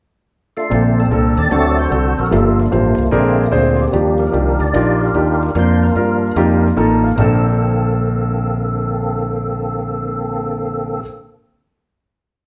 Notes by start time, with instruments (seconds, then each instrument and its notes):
0.57 tonewheel organ A3 D4 F4
0.70 fingered electric bass A#1, grand piano A#2 A#3 C4 D4 A4, tonewheel organ D3 A3 C4
1.00 tonewheel organ C4 D4 A4
1.11 fingered electric bass C2, grand piano A#3 C4 D4 A4
1.37 fingered electric bass D#2, tonewheel organ D5
1.51 fingered electric bass D2, grand piano D3 C4 D4 F#4 A4, tonewheel organ F#3 A3 C4 F#4 A4 D5
1.78 tonewheel organ F#4 A4 C5
1.90 fingered electric bass C2, grand piano C4 D4 F#4 A4
2.18 fingered electric bass A#1, tonewheel organ A#4
2.31 fingered electric bass G1, grand piano G2 A#3 F4 G4 A4, tonewheel organ F3 A3 A#3 D4 F4 A4
2.60 tonewheel organ A3 A#3 F4
2.71 fingered electric bass A1, grand piano A#3 F4 G4 C5
2.98 fingered electric bass C2
3.11 fingered electric bass A#1, grand piano A#2 C4 D4 G#4 A#4, tonewheel organ D3 G#3 C4
3.51 fingered electric bass D2, grand piano C4 D4 G#4 C5
3.79 tonewheel organ A#3 D4 G4
3.92 fingered electric bass D#2, grand piano D#3 D4 D#4 F4 G4, tonewheel organ F3 G3 D4
4.18 tonewheel organ D4 G4 A#4
4.32 fingered electric bass C2, grand piano D4 D#4 F4 G4
4.60 fingered electric bass D2, tonewheel organ D5
4.73 fingered electric bass A#1, grand piano D4 D#4 F4 A#4, tonewheel organ F4 G4 D5
5.00 tonewheel organ D4 G4 A#4
5.14 fingered electric bass D#2, grand piano D4 D#4 F4 G4
5.43 tonewheel organ A#4
5.55 fingered electric bass F2, tonewheel organ F3 A#3 D4 F4 C5, grand piano A#3 D4 F4 A#4
5.83 tonewheel organ D4 F4 A#4
5.95 fingered electric bass G2, grand piano A#3 D4 F4 A#4
6.36 fingered electric bass F2, tonewheel organ G3 A#3 D#4, grand piano A#3 D#4 F4 G4
6.76 fingered electric bass A1, grand piano A#3 D#4 F4 A4 A#5
7.04 grand piano F5
7.16 grand piano A#1 A#3 C4 D4, fingered electric bass A#1, tonewheel organ D3 A#3 C4 A4
7.20 grand piano A4